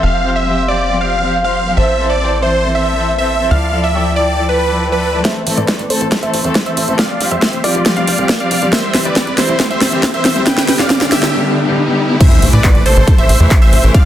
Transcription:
Already playing: E5
0.03 F1 F3 C4 G4 C5 F5
0.25 F3 C4 G4 C5
0.36 E5
0.47 F3 C4 G4 C5 F5
0.68 F3 C4 G4 C5 D5
0.90 F3 C4 G4 C5
1.01 F3 C4 G4 C5 F5
1.23 F3 C4 G4 C5
1.44 F3 C4 G4 C5 F5
1.66 F3 C4 G4 C5
1.77 A1 E3 C4 A4 C5 E5
1.99 E3 C4 A4 C5
2.10 D5
2.21 E3 C4 A4 C5
2.42 E3 C4 A4 C5 E5
2.64 E3 C4 A4 C5
2.75 E3 C4 A4 C5 E5
2.97 E3 C4 A4 C5
3.08 E5
3.18 E3 C4 A4 C5 E5
3.40 E3 C4 A4 C5
3.51 D2 F3 E4 A4 D5 F5
3.73 F3 E4 A4 D5
3.84 E5
3.94 F3 E4 A4 D5 G5
4.16 F3 E4 A4 D5
4.38 F3 E4 A4 D5
4.49 F3 E4 A4 B4 D5
4.71 F3 E4 A4 D5
4.92 F3 E4 A4 B4 D5
5.14 F3 E4 A4 D5
5.25 E3 A3 C4 A4 C5 E5, kick, snare, closed hi-hat, riser
5.47 A1 E3 A3 C4 A4, open hi-hat
5.57 A2 B4 D5, closed hi-hat
5.68 E3 A3 C4 A4, kick, snare, closed hi-hat
5.79 A1, closed hi-hat
5.90 E3 A3 C4 A4 C5, open hi-hat
6.01 A1, closed hi-hat
6.12 E3 A3 C4 A4, kick, snare, closed hi-hat
6.23 A1 E3 A3 C4 A4 C5 E5, closed hi-hat
6.34 A1, open hi-hat
6.44 E2 E3 A3 C4 A4, closed hi-hat
6.55 kick, snare, closed hi-hat
6.66 E3 A3 C4 A4 C5 E5, closed hi-hat
6.77 A1, open hi-hat
6.88 A1 E3 A3 C4 A4, closed hi-hat
6.99 F3 G3 C4 G4 D5 F5, kick, snare, closed hi-hat
7.20 F1 F3 G3 C4 G4, open hi-hat
7.31 F2 C5 E5, closed hi-hat
7.42 F3 G3 C4 G4, kick, snare, closed hi-hat
7.53 F1, closed hi-hat
7.64 F3 G3 C4 F4 G4 D5, kick, open hi-hat
7.75 F1, closed hi-hat
7.86 F3 G3 C4 G4, kick, snare, closed hi-hat
7.97 F1 F3 G3 C4 G4 D5 F5, closed hi-hat
8.07 F1, open hi-hat
8.18 C2 F3 G3 C4 G4, closed hi-hat
8.29 kick, snare, closed hi-hat
8.40 F3 G3 C4 G4 D5 F5, closed hi-hat
8.51 F1, open hi-hat
8.62 F1 F3 G3 C4 G4, closed hi-hat
8.72 E3 G3 C4 G4 C5 E5, kick, snare, closed hi-hat
8.94 C2 E3 G3 C4 G4, snare, open hi-hat
9.05 G1 B4 D5, closed hi-hat
9.16 E3 G3 C4 G4, kick, snare, closed hi-hat
9.27 C2, closed hi-hat
9.38 E3 G3 C4 E4 G4 C5, snare, open hi-hat
9.49 C2, closed hi-hat
9.60 E3 G3 C4 G4, kick, snare, closed hi-hat
9.70 C2 E3 G3 C4 G4 C5 E5, closed hi-hat
9.81 C2, snare, open hi-hat
9.92 G1 E3 G3 C4 G4, closed hi-hat
10.03 kick, snare, closed hi-hat
10.14 E3 G3 C4 G4 C5 E5, closed hi-hat
10.25 C2, snare, open hi-hat
10.36 C2 E3 G3 C4 G4, closed hi-hat
10.46 D3 G3 B3 G4 B4 G5, kick, snare, closed hi-hat
10.58 snare
10.68 G1 D3 G3 B3 G4, snare, open hi-hat
10.79 G2 D5 F5, snare, closed hi-hat
10.90 D3 G3 B3 G4, kick, snare, closed hi-hat
11.01 G1, snare, closed hi-hat
11.12 D3 G3 B3 G4 E5, kick, snare, open hi-hat
11.23 G1, snare
11.34 D3 G3 B3 G4
11.44 D3 G3 B3 G4
11.66 D3 G3 B3 G4
11.88 D3 G3 B3 G4
12.10 D3 G3 B3 G4
12.20 C3 E3 A3 E4 C5 E5, kick, closed hi-hat, crash, impact
12.31 closed hi-hat
12.42 A1 C3 E3 A3 E4, open hi-hat
12.53 A2 B4 D5, closed hi-hat
12.64 C3 E3 A3 E4, kick, clap, closed hi-hat
12.75 A1, closed hi-hat
12.86 C3 E3 A3 E4 A4 C5, open hi-hat
12.97 A1, closed hi-hat
13.07 C3 E3 A3 E4, kick, closed hi-hat
13.18 A1 C3 E3 A3 E4 C5 E5, closed hi-hat
13.29 A1, open hi-hat
13.40 E2 C3 E3 A3 E4
13.51 kick, clap, closed hi-hat
13.62 C3 E3 A3 E4 C5 E5, closed hi-hat
13.73 A1, open hi-hat
13.84 A1 C3 E3 A3 E4, closed hi-hat
13.94 F3 G3 C4 G4 D5 F5, kick, closed hi-hat

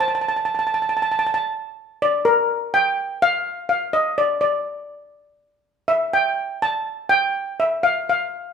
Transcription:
0.00 A5
0.08 A5
0.15 A5
0.21 A5
0.29 A5
0.36 A5
0.45 A5
0.55 A5
0.59 A5
0.67 A5
0.74 A5
0.82 A5
0.89 A5
0.97 A5
1.02 A5
1.12 A5
1.19 A5
1.27 A5
1.34 A5
2.02 D5
2.25 A#4
2.74 G5
3.22 F5
3.69 F5
3.93 D#5
4.18 D5
4.41 D5
5.88 E5
6.13 G5
6.62 A5
7.09 G5
7.60 E5
7.83 F5
8.09 F5

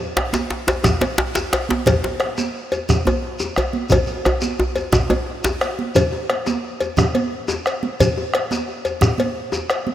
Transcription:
0.00 djembe tone
0.17 bombo rim, cowbell, djembe slap, high conga
0.33 djembe slap, high conga, shekere
0.51 bombo rim, djembe slap
0.67 cowbell, djembe slap, djembe tone, shekere
0.84 bombo rim, bombo low, djembe slap, djembe bass, low conga, shekere
1.01 cowbell, djembe slap, high conga
1.18 djembe slap, high conga
1.35 djembe slap, djembe tone, shekere
1.53 bombo rim, cowbell, djembe slap, shekere
1.69 djembe slap, high conga
1.86 bombo low, cowbell, djembe slap, high conga, low conga, djembe bass, shekere
2.04 djembe slap, djembe tone
2.20 bombo rim, cowbell, high conga
2.38 djembe slap, high conga, shekere
2.56 bombo rim
2.72 cowbell, djembe tone, shekere
2.89 bombo rim, bombo low, low conga, djembe bass, shekere
3.05 cowbell, high conga, djembe tone
3.22 high conga
3.39 djembe slap, djembe tone, shekere
3.56 bombo rim, cowbell, djembe tone, shekere
3.73 high conga
3.89 bombo low, cowbell, djembe tone, low conga, djembe bass, shekere
4.06 bombo rim, djembe slap, high conga, shekere
4.25 bombo rim, cowbell, high conga, djembe tone, shekere
4.41 bombo rim, djembe slap, high conga, shekere
4.59 bombo rim, djembe tone
4.75 cowbell, djembe tone, high conga, shekere
4.92 bombo rim, bombo low, djembe slap, djembe tone, low conga, djembe bass, shekere
5.10 bombo rim, cowbell, djembe tone, high conga
5.44 djembe slap, high conga, djembe tone, shekere
5.61 bombo rim, cowbell, high conga, shekere
5.79 djembe slap, high conga
5.95 bombo low, cowbell, high conga, djembe bass, low conga, shekere
6.13 djembe tone
6.30 bombo rim, cowbell, high conga
6.46 djembe slap, high conga, shekere
6.65 bombo rim, djembe slap
6.80 cowbell, djembe tone, shekere
6.97 bombo rim, bombo low, low conga, djembe bass, shekere
7.15 cowbell, high conga
7.33 high conga
7.48 djembe slap, djembe tone, shekere
7.66 bombo rim, cowbell, shekere
7.83 high conga
8.00 bombo low, cowbell, high conga, low conga, djembe bass, shekere
8.17 djembe tone
8.34 bombo rim, cowbell, high conga
8.51 djembe slap, high conga, shekere
8.68 bombo rim, djembe slap
8.85 cowbell, djembe tone, shekere
9.01 bombo rim, bombo low, low conga, djembe bass, shekere
9.18 cowbell, high conga
9.36 high conga
9.52 djembe slap, djembe tone, shekere
9.69 bombo rim, cowbell, shekere
9.87 high conga

